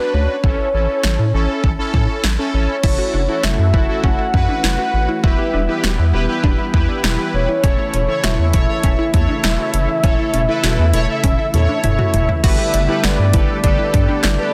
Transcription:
Already playing: B4
0.00 D4 F#4 B4
0.14 D2 C#5
0.44 A1 C#4 E4 A4, kick
0.74 A1 C#4 E4 A4
1.04 A1, snare
1.19 A2
1.34 A1 C#4 E4 A4
1.64 A1, kick
1.78 C#4 E4 A4
1.94 A2, kick
2.24 A1, snare
2.38 C#4 E4 A4
2.54 A1 C#5
2.83 F#1 E3 A3 C#4 E4 F#4 A4, kick, crash
2.98 F#4
3.14 F#1 D4
3.29 E4 F#4 A4
3.44 F#1 F#4 E5, snare
3.59 F#2
3.74 F#1 E4 F#4 A4, kick
3.89 E4 F#4 A4
4.04 F#1 C#4 F#5, kick
4.19 E4
4.33 F#2 E4 F#4 B4, kick
4.49 D4
4.64 F#1 E4 F#5, snare
4.79 F#4
4.93 A1
5.09 E4
5.23 E1 G3 B3 E4 F#4 G4 B4 E5, kick
5.38 G4
5.53 E1 D4
5.68 E4 G4 B4
5.84 E1 F#4, snare
5.99 E2
6.13 E1 E4 G4 B4
6.28 E4 G4 B4
6.44 E1 D4, kick
6.59 E4
6.73 E2 E4 G4 B4, kick
6.89 D4
7.04 E1 E4, snare
7.19 G4
7.34 E1 C#5
7.49 E4
7.63 E1 C#3 A3 C#4 E4 A4 C#5, kick, closed hi-hat
7.79 E4
7.94 E1 C#4, closed hi-hat
8.08 E4 A4 C#5
8.24 E1 F#4 E5, snare, closed hi-hat
8.39 E2
8.53 E1 E4 A4 C#5, kick, closed hi-hat
8.69 E4 A4 C#5
8.83 E1 C#4 E5, kick, closed hi-hat
8.99 E4
9.13 E2 E4 A4 C#5, kick, closed hi-hat
9.29 D4
9.43 E1 E4, snare, closed hi-hat
9.59 F#4
9.74 F#1, closed hi-hat
9.88 E4
10.04 E1 C#4 E4 A4 C#5, kick, closed hi-hat
10.19 E4
10.34 E1 C#4, closed hi-hat
10.48 E4 A4 B4
10.64 E1 F#4, snare, closed hi-hat
10.79 E2
10.94 E1 E4 A4 C#5, closed hi-hat
11.08 E4 A4 E5
11.24 E1 C#4, kick, closed hi-hat, high tom
11.39 E4
11.54 E2 E4 A4 C#5, closed hi-hat, mid tom
11.69 D4
11.84 E1 E4 E5, closed hi-hat, mid tom
11.99 F#4, mid tom
12.14 E1, closed hi-hat, floor tom
12.29 E4, floor tom
12.44 G1 D3 G3 A3 B3 F#4 G4 A4 B4 E5, kick, closed hi-hat, crash
12.58 G4
12.73 G1 D4, closed hi-hat
12.89 E4 G4 A4 B4
13.04 G1 F#4 D5, snare, closed hi-hat
13.19 G2
13.33 G1 E4 G4 A4 B4, kick, closed hi-hat
13.64 G1 D4 G4 A4 B4 D5, kick, closed hi-hat
13.79 E4
13.94 G2, kick, closed hi-hat
14.09 D4
14.24 G1 E4 D5, snare, clap, closed hi-hat
14.39 G4 A4 B4

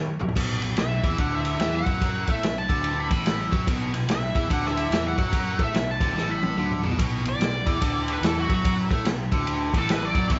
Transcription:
Already playing: F#2 D#3 E4 G4 A#4 C#5
0.19 F#2 C#3 E4 G4 A#4 C#5, mid tom
0.29 floor tom
0.36 B1 B2, kick, crash
0.62 B1 B2, ride
0.77 B1 B2 E5, snare, ride
1.04 E2 E3, kick, ride
1.18 D2 D3 F#5, kick, ride
1.35 E5
1.45 ride
1.60 E2 E3, snare, ride
1.76 F#5
1.86 F#2 F#3, kick, ride
2.01 kick, ride
2.27 A2 A3 E5, kick, ride
2.43 B1 B2, snare, ride
2.58 A5
2.69 D2 D3, kick, ride
2.84 ride
3.00 B5
3.11 A1 A2, kick, ride
3.26 snare, ride
3.52 F#2 F#3, kick, ride
3.67 B1 B2, kick, ride
3.93 B1 B2, ride
4.08 B1 B2 E5, snare, ride
4.35 E2 E3, kick, ride
4.49 D2 D3 F#5, kick, ride
4.66 E5, snare
4.77 ride
4.90 E2 E3, snare, ride
5.08 F#5
5.17 F#2 F#3, kick, ride
5.33 kick, ride
5.59 A2 A3, kick, ride
5.63 E5
5.74 B1 B2, snare, ride
5.91 A5
6.00 D2 D3, kick, ride
6.15 A1 A2, snare
6.31 B5
6.43 high tom
6.57 D2 D3, mid tom
6.71 mid tom
6.83 B1 B2, floor tom
6.92 floor tom
6.99 B1 B2, kick, ride
7.25 B1 B2 D5, ride
7.39 B1 B2, snare, ride
7.66 E2 E3, kick, ride
7.81 D2 D3, kick, ride
8.08 ride
8.13 B4
8.22 E2 E3, snare, ride
8.26 A4
8.40 F#4
8.49 F#2 F#3, kick, ride
8.54 F#4
8.65 kick, ride
8.91 A2 A3, kick, ride
9.05 B1 B2, snare, ride
9.32 D2 D3, kick, ride
9.47 ride
9.74 A1 A2, kick, ride
9.78 A4
9.89 B4, snare, ride
10.05 D5
10.15 F#2 F#3, kick, ride
10.27 B1 B2 D4 F#4 B4 D5, kick, ride
10.32 E5

